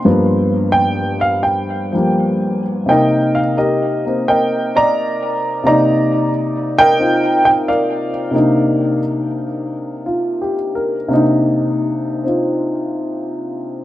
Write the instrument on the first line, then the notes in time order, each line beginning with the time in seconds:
grand piano
0.05 G2 F3 A#3 B3
0.72 G5
1.21 F5
1.43 G5
1.93 F3 G3 A#3
2.86 C3 A#3 A#4 G5
2.90 D#4 D#5
3.35 F5
3.57 G4 A#4 D#5
4.06 A#3 C4
4.28 A#4 D#5 G5
4.76 D5 D#5 A#5
5.64 C3 A#3 D5 D#5 A#5
5.68 D#4
6.79 A#4 D#5 G5
6.98 C4 D#4 F4
7.45 G5
7.68 A#4 D5 F5
8.31 C3 A#3 D4
8.36 D#4
10.06 F4
10.42 G4
10.75 A#4
11.08 C3 A#3 D4
11.13 D#4
12.24 C4 D#4 F4